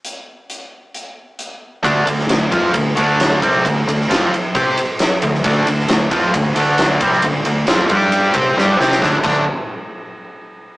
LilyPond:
<<
  \new Staff \with { instrumentName = "Distorted electric guitar" } { \time 4/4 \key d \minor \tempo 4 = 134 r1 | <d a d'>8 <d a>8 <d a>8 <f c' f'>8 <d a>8 <d a d'>4 <c g c'>8 | <d a>8 <d a>8 <f c' f'>8 r8 <c' g' c''>8 r4 <d a>8 | <d a d'>8 <d a>8 <d a>8 <f c' f'>8 <d a>8 <d a d'>4 <c g c'>8 |
<d a>8 <d a>8 <f c' f'>8 <g d' g'>4 <c' g' c''>8 <g d' g'>8 <c' g' c''>8 | <d a d'>8 <d a d'>8 r2. | }
  \new Staff \with { instrumentName = "Overdriven electric guitar" } { \time 4/4 \key d \minor r1 | <d a d'>8 <d a>8 <d a>8 <f c' f'>8 <d a>8 <d a d'>4 <c g c'>8 | <d a>8 <d a>8 <f c' f'>8 r8 <c' g' c''>8 r4 <d a>8 | <d a d'>8 <d a>8 <d a>8 <f c' f'>8 <d a>8 <d a d'>4 <c g c'>8 |
<d a>8 <d a>8 <f c' f'>8 <g d' g'>4 <c' g' c''>8 <g d' g'>8 <c' g' c''>8 | <d a d'>8 <d a d'>8 r2. | }
  \new Staff \with { instrumentName = "Fingered electric bass" } { \clef bass \time 4/4 \key d \minor r1 | d,8 d,8 d,8 f,8 d,8 d,4 c,8 | d,8 d,8 f,8 r8 c8 r4 d,8 | d,8 d,8 d,8 f,8 d,8 d,4 c,8 |
d,8 d,8 f,8 g,4 c8 g,8 c8 | d,8 d,8 r2. | }
  \new DrumStaff \with { instrumentName = "Drums" } \drummode { \time 4/4 hh4 hh4 hh4 hh4 | <bd cymr>8 cymr16 sn16 <cymr sn>8 <bd cymr>8 <bd cymr>8 cymr8 <cymr sn>8 <bd cymr>8 | <bd cymr>8 cymr16 sn16 <cymr sn>8 cymr8 <bd cymr>8 cymr8 <cymr sn>8 cymr16 sn16 | <bd cymr>8 cymr16 sn16 <cymr sn>8 <bd cymr>8 <bd cymr>8 cymr8 <cymr sn>8 <bd cymr>16 sn16 |
<bd cymr>8 cymr8 <cymr sn>8 <bd cymr>8 cymr8 <bd cymr>8 sn8 sn16 sn16 | <bd sn>8 <cymc bd>8 r4 r4 r4 | }
>>